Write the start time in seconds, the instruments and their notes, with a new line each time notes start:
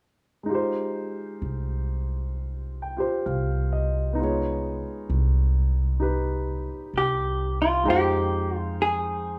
0.43 grand piano G#3 D#4
0.49 grand piano F4 G4
0.55 grand piano C5
1.42 upright bass C2
2.82 grand piano G5
2.97 grand piano F4 G4 C5
3.26 upright bass C2, grand piano F5
3.73 grand piano D#5
4.13 grand piano B3 D#4
4.19 grand piano G#3 F4
4.24 grand piano C#5
5.10 upright bass C2
6.00 grand piano D#4 G4 B4
6.93 upright bass C2
6.98 hollow-body jazz guitar G4
7.62 hollow-body jazz guitar F4
7.83 upright bass F2, grand piano G#3 D#4 F4 G5
7.88 hollow-body jazz guitar G4, grand piano C5
8.57 hollow-body jazz guitar F4
8.82 hollow-body jazz guitar G#4